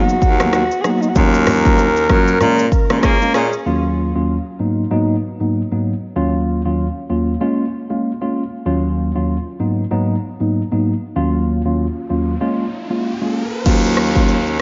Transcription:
Already playing: F#3 A#3 B3 D#4 F#4
0.09 shaker
0.22 D#2, kick, shaker
0.40 F#3 A#3 B3 D#4, cross-stick, low bongo, shaker
0.53 F#4, cross-stick, high bongo, shaker
0.71 shaker
0.81 F#3 A#3 B3 D#4 G#4, cross-stick, shaker
0.90 F#4
1.01 D#4, shaker
1.09 F#4
1.15 D#2 F#3 A#3 C#4 F4 A#4, kick, low conga, shaker
1.34 shaker
1.47 cross-stick, open hi-hat, high bongo, low bongo, low conga, shaker
1.65 F#3 A#3 C#4 F4, kick, shaker
1.78 high bongo, shaker
1.97 shaker
2.09 F#2 F#3 A#3 C#4 F4, kick, cross-stick, low bongo, shaker
2.28 shaker
2.40 A#2 G#3 A#3 C#4 F4, cross-stick, low conga, shaker
2.59 shaker
2.72 kick, shaker
2.90 A#2 G#3 A#3 C#4 F4, cross-stick, low bongo, shaker
3.03 G#3 A#3 C#4 F4 G#4, kick, cross-stick, high bongo, shaker
3.21 G#3 A#3 C#4 F4, shaker
3.34 A#2 G#3 C#4 F4 G#4, cross-stick, shaker
3.53 shaker
3.66 D#2 F#3 A#3 C#4 F4
4.15 D#2 F#3 A#3 C#4 F4
4.59 G#2 F#3 A#3 B3 D#4
4.91 G#2 F#3 A#3 B3 D#4
5.40 G#2 F#3 A#3 B3 D#4
5.71 G#2 F#3 A#3 B3 D#4
6.16 D#2 F#3 A#3 C#4 F4
6.65 D#2 F#3 A#3 C#4 F4
7.09 D#2 F#3 A#3 C#4 F4
7.40 G#3 A#3 C#4 F4
7.90 G#3 A#3 C#4 F4
8.21 G#3 A#3 C#4 F4
8.66 D#2 F#3 A#3 C#4 F4
9.15 D#2 F#3 A#3 C#4 F4
9.59 G#2 F#3 A#3 B3 D#4
9.91 G#2 F#3 A#3 B3 D#4
10.40 G#2 F#3 A#3 B3 D#4
10.71 G#2 F#3 A#3 B3 D#4
11.16 D#2 F#3 A#3 C#4 F4, riser
11.65 D#2 F#3 A#3 C#4 F4
12.09 D#2 F#3 A#3 C#4 F4
12.41 G#3 A#3 C#4 F4
12.90 G#3 A#3 C#4 F4
13.21 G#3 A#3 C#4 F4
13.66 D#2 F#3 A#3 C#4 F4, kick, crash, downlifter, shaker
13.84 shaker
13.97 cross-stick, shaker
14.15 F#3 A#3 C#4 F4, kick, shaker
14.29 shaker
14.47 shaker

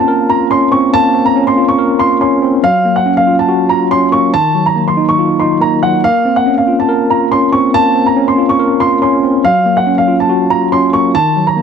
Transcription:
Already playing: A#3 C4 C#4 F4
0.00 A5
0.08 A#4
0.30 F4 A#5
0.50 C#4 C6
0.71 C4 C#6
0.94 A#3 A5
1.14 C4
1.26 A#5
1.36 C#4
1.47 C6
1.57 F4
1.69 C#6
1.79 A#4
1.99 F4 C6
2.21 C#4 C6
2.42 C4
2.63 F#3 F5
2.85 A#3
2.96 F#5
3.06 C#4
3.17 F5
3.27 F4
3.39 A5
3.49 F#4
3.69 F4 A#5
3.91 C#4 C6
4.12 A#3 C#6
4.34 D#3 A5
4.55 F#3
4.66 A#5
4.76 A#3
4.88 C6
4.97 D#4
5.09 C#6
5.19 F4
5.40 D#4 C6
5.61 A#3 A#5
5.83 F#3 F#5
6.04 A#3 F5
6.25 C4
6.36 F#5
6.46 C#4
6.58 F5
6.68 F4
6.80 A5
6.89 A#4
7.10 F4 A#5
7.31 C#4 C6
7.52 C4 C#6
7.74 A#3 A5
7.95 C4
8.06 A#5
8.16 C#4
8.28 C6
8.38 F4
8.49 C#6
8.59 A#4
8.80 F4 C6
9.02 C#4 C6
9.23 C4
9.44 F#3 F5
9.66 A#3
9.77 F#5
9.87 C#4
9.98 F5
10.08 F4
10.20 A5
10.29 F#4
10.50 F4 A#5
10.72 C#4 C6
10.93 A#3 C#6
11.15 D#3 A5
11.36 F#3
11.47 A#5
11.57 A#3

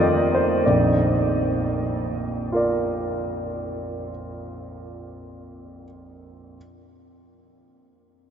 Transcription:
Already playing: F2 D#3 A3 F4 D5
0.35 C5
0.66 A#1 F2 D5
2.52 F4 A#4 D5

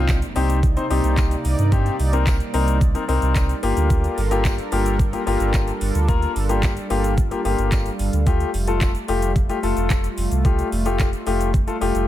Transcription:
Already playing: C2 C3 G3 A#3 C4 D#4 F4 D5, impact
0.09 kick, clap, closed hi-hat, tambourine, shaker
0.22 closed hi-hat, shaker
0.36 C2 C4 D#4 G4, open hi-hat, shaker
0.50 closed hi-hat, shaker
0.63 kick, closed hi-hat, shaker
0.77 C4 D#4 C5, closed hi-hat, shaker
0.90 C2 C4 D#4 G4, open hi-hat, shaker
1.04 C2, closed hi-hat, shaker
1.17 kick, clap, closed hi-hat, tambourine, shaker
1.31 closed hi-hat, shaker
1.45 C2, open hi-hat, shaker
1.59 G2, closed hi-hat, shaker
1.72 C4 D#4 G4, kick, closed hi-hat, shaker
1.86 closed hi-hat, shaker
1.99 C2, open hi-hat, shaker
2.13 C4 D#4 A#4, closed hi-hat, shaker
2.27 kick, clap, closed hi-hat, tambourine, shaker
2.40 closed hi-hat, shaker
2.54 C2 C4 D#4 A#4, open hi-hat, shaker
2.68 closed hi-hat, shaker
2.81 kick, closed hi-hat, shaker
2.95 C4 D#4 A#4, closed hi-hat, shaker
3.08 C2 C4 D#4 A#4, open hi-hat, shaker
3.22 C2, closed hi-hat, shaker
3.36 kick, clap, closed hi-hat, tambourine, shaker
3.49 closed hi-hat, shaker
3.63 G1 A#3 D4 F4 G4 A4 A#4, open hi-hat, shaker
3.77 D2, closed hi-hat, shaker
3.90 kick, closed hi-hat, shaker
4.04 closed hi-hat, shaker
4.18 G1, open hi-hat, shaker
4.31 A#3 F4 G4, closed hi-hat, shaker
4.45 kick, clap, closed hi-hat, tambourine, shaker
4.58 closed hi-hat, shaker
4.72 G1 A#3 F4 G4, open hi-hat, shaker
4.86 closed hi-hat, shaker
4.99 kick, closed hi-hat, shaker
5.13 A#3 F4 G4, closed hi-hat, shaker
5.27 G1 A#3 F4 G4, open hi-hat, shaker
5.40 G1, closed hi-hat, shaker
5.54 kick, clap, closed hi-hat, tambourine, shaker
5.68 closed hi-hat, shaker
5.81 G1, open hi-hat, shaker
5.95 D2, closed hi-hat, shaker
6.08 A#3 F4 A#4, kick, closed hi-hat, shaker
6.22 closed hi-hat, shaker
6.36 G1, open hi-hat, shaker
6.49 A#3 F4 G4, closed hi-hat, shaker
6.63 kick, clap, closed hi-hat, tambourine, shaker
6.77 closed hi-hat, shaker
6.90 G1 A#3 F4 G4, open hi-hat, shaker
7.04 closed hi-hat, shaker
7.18 kick, closed hi-hat, shaker
7.31 A#3 F4 G4, closed hi-hat, shaker
7.45 G1 A#3 F4 G4, open hi-hat, shaker
7.58 G1, closed hi-hat, shaker
7.72 kick, clap, closed hi-hat, tambourine, shaker
7.86 closed hi-hat, shaker
7.99 G1, open hi-hat, shaker
8.13 D2, closed hi-hat, shaker
8.26 A3 F4 G4, kick, closed hi-hat, shaker
8.40 closed hi-hat, shaker
8.54 F1, open hi-hat, shaker
8.67 A3 F4 A4, closed hi-hat, shaker
8.81 kick, clap, closed hi-hat, tambourine, shaker
8.95 closed hi-hat, shaker
9.08 F1 A3 F4 G4, open hi-hat, shaker
9.22 closed hi-hat, shaker
9.36 kick, closed hi-hat, shaker
9.49 A3 F4 G4, closed hi-hat, shaker
9.63 F1 A3 F4 A4, open hi-hat, shaker
9.77 F1, closed hi-hat, shaker
9.90 kick, clap, closed hi-hat, tambourine, shaker
10.04 closed hi-hat, shaker
10.18 F1, open hi-hat, shaker
10.31 C2, closed hi-hat, shaker
10.45 A3 F4 G4, kick, closed hi-hat, shaker
10.59 closed hi-hat, shaker
10.72 F1, open hi-hat, shaker
10.86 A3 F4 G4, closed hi-hat, shaker
10.99 kick, clap, closed hi-hat, tambourine, shaker
11.13 closed hi-hat, shaker
11.26 F1 A3 F4 G4, open hi-hat, shaker
11.41 closed hi-hat, shaker
11.54 kick, closed hi-hat, shaker
11.67 A3 F4 A4, closed hi-hat, shaker
11.81 F1 A3 F4 G4, open hi-hat, shaker
11.95 F1, closed hi-hat, shaker

